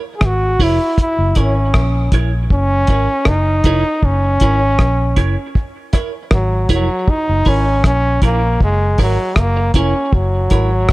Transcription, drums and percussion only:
0.21 kick loud
0.21 cross-stick loud
0.60 kick medium
0.60 open hi-hat medium
0.98 kick loud
0.98 hi-hat pedal medium
1.35 kick medium
1.35 closed hi-hat medium
1.74 kick loud
1.74 cross-stick loud
2.12 kick medium
2.12 closed hi-hat medium
2.50 kick loud
2.87 kick medium
2.87 closed hi-hat medium
3.25 kick loud
3.25 cross-stick loud
3.64 kick medium
3.64 closed hi-hat medium
4.03 kick loud
4.40 kick medium
4.40 closed hi-hat medium
4.79 kick loud
4.79 cross-stick medium
5.17 kick medium
5.17 closed hi-hat medium
5.55 kick loud
5.93 kick medium
5.93 cross-stick medium
5.93 closed hi-hat medium
6.31 kick loud
6.31 cross-stick loud
6.69 kick medium
6.69 closed hi-hat medium
7.08 kick loud
7.45 kick medium
7.45 open hi-hat soft
7.84 kick loud
7.84 cross-stick loud
7.84 hi-hat pedal medium
8.22 kick medium
8.22 closed hi-hat medium
8.61 kick loud
8.98 kick medium
8.98 cross-stick medium
8.98 open hi-hat soft
9.36 kick loud
9.36 cross-stick loud
9.36 hi-hat pedal medium
9.74 kick medium
9.74 closed hi-hat medium
10.13 kick loud
10.50 kick medium
10.50 closed hi-hat medium
10.89 kick loud
10.89 cross-stick loud

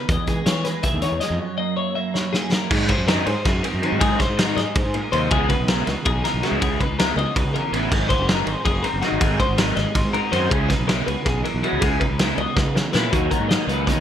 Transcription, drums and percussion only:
0.09 kick loud
0.09 closed hi-hat medium
0.27 kick medium
0.27 closed hi-hat medium
0.46 snare loud
0.46 closed hi-hat medium
0.65 snare soft
0.65 closed hi-hat medium
0.83 kick medium
0.83 closed hi-hat medium
1.02 closed hi-hat medium
1.21 snare soft
1.21 closed hi-hat medium
2.15 snare soft
2.34 snare medium
2.52 snare medium
2.71 kick loud
2.71 crash loud
2.89 kick medium
2.89 ride medium
3.08 snare loud
3.08 ride loud
3.27 ride medium
3.45 kick loud
3.45 snare soft
3.45 ride loud
3.64 ride medium
3.83 ride medium
4.01 kick loud
4.01 ride loud
4.20 kick medium
4.20 snare soft
4.20 ride medium
4.39 snare loud
4.39 ride medium
4.57 snare soft
4.57 ride medium
4.75 kick loud
4.75 ride medium
4.94 ride medium
5.13 ride medium
5.31 kick loud
5.31 ride medium
5.50 kick medium
5.50 ride medium
5.68 snare loud
5.68 ride loud
5.87 snare soft
5.87 ride medium
6.05 kick loud
6.05 ride loud
6.25 snare soft
6.25 ride medium
6.43 snare soft
6.43 ride medium
6.62 kick loud
6.62 ride loud
6.81 kick medium
6.81 ride medium
6.99 snare loud
6.99 ride loud
7.19 ride medium
7.36 kick loud
7.36 ride medium
7.56 ride medium
7.74 ride medium
7.92 kick loud
7.92 crash medium
8.10 kick medium
8.10 ride medium
8.29 snare loud
8.29 ride medium
8.47 ride medium
8.65 kick loud
8.65 ride medium
8.84 ride medium
9.02 snare soft
9.02 ride medium
9.21 kick loud
9.21 ride medium
9.40 kick medium
9.40 ride medium
9.58 snare loud
9.58 ride loud
9.77 snare soft
9.77 ride medium
9.95 kick loud
9.95 ride loud
10.14 ride medium
10.33 ride medium
10.51 kick loud
10.51 ride loud
10.70 kick medium
10.70 snare soft
10.70 ride medium
10.89 snare loud
10.89 ride medium
11.08 ride medium
11.26 kick loud
11.26 snare soft
11.26 ride medium
11.45 ride medium
11.64 ride medium
11.82 kick loud
11.82 ride loud
12.01 kick medium
12.01 ride medium
12.19 snare loud
12.19 ride loud
12.38 ride medium
12.57 kick loud
12.57 snare medium
12.76 snare medium
12.95 snare loud
13.13 kick loud
13.13 closed hi-hat medium
13.31 kick medium
13.31 closed hi-hat medium
13.50 snare loud
13.50 closed hi-hat medium
13.69 closed hi-hat medium
13.87 kick medium
13.87 snare soft
13.87 closed hi-hat medium

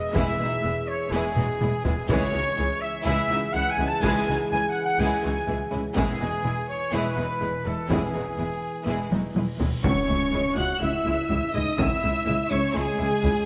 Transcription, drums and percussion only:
0.16 taiko medium
1.36 taiko mid medium
1.61 taiko mid medium
1.85 taiko low medium
2.09 taiko medium
4.03 taiko medium
5.97 taiko medium
7.90 taiko medium
9.12 taiko high medium
9.36 taiko high medium
9.60 taiko low medium
9.84 taiko medium
11.30 taiko low medium
11.55 taiko low soft
11.79 taiko loud
13.24 taiko low medium

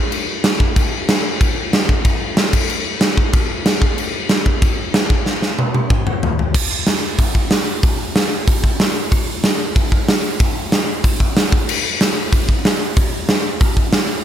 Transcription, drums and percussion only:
0.12 crash medium
0.44 snare loud
0.44 crash medium
0.60 kick loud
0.76 kick loud
0.76 crash medium
1.09 snare loud
1.09 crash medium
1.41 kick loud
1.41 crash medium
1.73 snare loud
1.73 crash medium
1.89 kick medium
2.05 kick loud
2.05 crash medium
2.37 snare loud
2.37 crash medium
2.53 kick loud
2.53 crash loud
2.70 crash medium
3.01 snare loud
3.01 crash medium
3.17 kick loud
3.33 kick loud
3.33 crash medium
3.66 snare loud
3.66 crash medium
3.82 kick loud
3.98 crash medium
4.29 snare loud
4.29 crash medium
4.46 kick medium
4.62 kick loud
4.62 crash medium
4.94 snare loud
4.94 crash medium
5.10 kick loud
5.26 snare medium
5.42 snare medium
5.59 high tom medium
5.75 high tom medium
5.90 kick loud
5.90 mid tom medium
6.07 mid tom medium
6.23 floor tom loud
6.39 floor tom medium
6.54 kick loud
6.54 crash loud
6.87 snare loud
6.87 open hi-hat medium
7.18 kick loud
7.18 open hi-hat medium
7.35 kick medium
7.51 snare loud
7.51 open hi-hat medium
7.83 kick loud
7.83 open hi-hat medium
8.16 snare loud
8.16 open hi-hat medium
8.48 kick loud
8.48 open hi-hat medium
8.64 kick medium
8.80 snare loud
8.80 open hi-hat medium
9.12 kick loud
9.12 open hi-hat medium
9.44 snare loud
9.44 open hi-hat medium
9.76 kick loud
9.76 open hi-hat medium
9.92 kick medium
10.09 snare loud
10.09 open hi-hat medium
10.40 kick loud
10.40 open hi-hat medium
10.72 snare loud
10.72 open hi-hat medium
11.04 kick loud
11.04 open hi-hat medium
11.20 kick medium
11.37 snare loud
11.37 open hi-hat medium
11.52 kick loud
11.69 crash loud
12.01 snare loud
12.01 open hi-hat medium
12.33 kick loud
12.33 open hi-hat medium
12.49 kick medium
12.65 snare loud
12.65 open hi-hat medium
12.97 kick loud
12.97 open hi-hat medium
13.29 snare loud
13.29 open hi-hat medium
13.61 kick loud
13.61 open hi-hat medium
13.77 kick medium
13.93 snare loud
13.93 open hi-hat medium

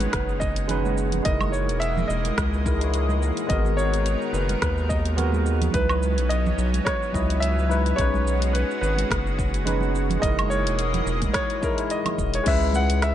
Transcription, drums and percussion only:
0.00 closed hi-hat soft
0.00 high conga medium
0.00 cabasa soft
0.13 kick loud
0.13 cross-stick medium
0.13 closed hi-hat medium
0.13 cabasa soft
0.29 cabasa soft
0.41 kick medium
0.41 cabasa medium
0.56 closed hi-hat soft
0.56 cabasa soft
0.69 closed hi-hat medium
0.69 low conga medium
0.69 cabasa soft
0.85 high conga medium
0.85 cabasa soft
0.98 cabasa medium
1.12 closed hi-hat soft
1.12 low conga medium
1.12 cabasa soft
1.25 kick loud
1.25 closed hi-hat medium
1.25 cabasa soft
1.41 high conga medium
1.41 cabasa soft
1.41 low woodblock medium
1.53 cabasa medium
1.69 closed hi-hat soft
1.69 cabasa soft
1.82 closed hi-hat soft
1.82 cabasa soft
1.97 low conga loud
1.97 cabasa soft
2.10 cabasa medium
2.25 closed hi-hat soft
2.25 high conga medium
2.25 cabasa soft
2.38 kick loud
2.38 cross-stick medium
2.38 closed hi-hat soft
2.38 cabasa soft
2.53 cabasa soft
2.66 kick loud
2.66 cabasa medium
2.81 closed hi-hat soft
2.81 cabasa soft
2.94 closed hi-hat medium
2.94 cabasa soft
3.09 high conga medium
3.09 cabasa soft
3.22 cabasa medium
3.37 closed hi-hat soft
3.37 cabasa soft
3.50 kick loud
3.50 closed hi-hat medium
3.50 cabasa soft
3.65 high conga medium
3.65 cabasa soft
3.79 cabasa medium
3.94 closed hi-hat soft
3.94 cabasa soft
4.06 closed hi-hat soft
4.06 cabasa soft
4.22 cabasa soft
4.34 cabasa medium
4.49 closed hi-hat soft
4.49 high conga medium
4.49 cabasa soft
4.62 kick loud
4.62 cross-stick medium
4.62 closed hi-hat soft
4.62 cabasa soft
4.78 cabasa soft
4.90 kick medium
4.90 cabasa medium
5.05 closed hi-hat soft
5.05 cabasa soft
5.18 closed hi-hat medium
5.18 low conga medium
5.18 cabasa soft
5.32 high conga medium
5.32 cabasa soft
5.46 cabasa medium
5.62 closed hi-hat soft
5.62 low conga medium
5.62 cabasa soft
5.74 kick loud
5.74 closed hi-hat medium
5.74 cabasa soft
5.89 high conga medium
5.89 cabasa soft
5.89 low woodblock medium
6.03 cabasa medium
6.18 closed hi-hat soft
6.18 cabasa soft
6.30 closed hi-hat soft
6.30 cabasa soft
6.46 low conga medium
6.46 cabasa soft
6.58 cabasa medium
6.74 closed hi-hat soft
6.74 high conga medium
6.74 cabasa soft
6.86 kick loud
6.86 cross-stick medium
6.86 closed hi-hat medium
6.86 cabasa soft
7.03 cabasa soft
7.14 kick medium
7.14 cabasa medium
7.30 closed hi-hat soft
7.30 cabasa soft
7.43 closed hi-hat medium
7.43 cabasa soft
7.58 high conga medium
7.58 cabasa soft
7.71 cabasa medium
7.86 closed hi-hat soft
7.86 cabasa soft
7.98 kick loud
7.98 closed hi-hat medium
7.98 cabasa soft
8.14 high conga medium
8.14 cabasa soft
8.27 cabasa medium
8.42 closed hi-hat soft
8.42 cabasa soft
8.55 closed hi-hat soft
8.55 cabasa soft
8.71 cabasa soft
8.83 cabasa medium
8.97 closed hi-hat soft
8.97 high conga medium
8.97 cabasa soft
9.11 kick loud
9.11 cross-stick medium
9.11 closed hi-hat medium
9.11 cabasa soft
9.27 cabasa soft
9.39 kick medium
9.39 cabasa medium
9.54 closed hi-hat soft
9.54 cabasa soft
9.66 closed hi-hat medium
9.66 low conga medium
9.66 cabasa soft
9.81 high conga medium
9.81 cabasa soft
9.95 cabasa medium
10.10 closed hi-hat soft
10.10 low conga medium
10.10 cabasa soft
10.23 kick loud
10.23 closed hi-hat medium
10.23 cabasa soft
10.39 closed hi-hat soft
10.39 high conga medium
10.39 cabasa soft
10.39 low woodblock medium
10.51 cabasa medium
10.67 closed hi-hat soft
10.67 cabasa soft
10.79 closed hi-hat medium
10.79 cabasa soft
10.94 closed hi-hat soft
10.94 low conga loud
10.94 cabasa soft
11.07 cabasa medium
11.22 kick medium
11.22 closed hi-hat soft
11.22 high conga medium
11.22 cabasa soft
11.34 kick loud
11.34 cross-stick medium
11.34 closed hi-hat medium
11.34 cabasa soft
11.50 closed hi-hat soft
11.50 cabasa soft
11.63 kick medium
11.63 cabasa medium
11.78 closed hi-hat soft
11.78 cabasa soft
11.90 closed hi-hat medium
11.90 cabasa soft
12.05 closed hi-hat soft
12.05 high conga medium
12.05 low conga medium
12.05 cabasa soft
12.05 low woodblock medium
12.19 kick medium
12.19 cabasa medium
12.34 closed hi-hat soft
12.34 cabasa soft
12.46 kick loud
12.46 closed hi-hat medium
12.46 crash medium
12.46 cabasa soft
12.62 cabasa soft
12.73 high conga medium
12.73 cabasa medium
12.90 closed hi-hat soft
12.90 cabasa soft
13.02 cross-stick medium
13.02 closed hi-hat medium
13.02 cabasa soft

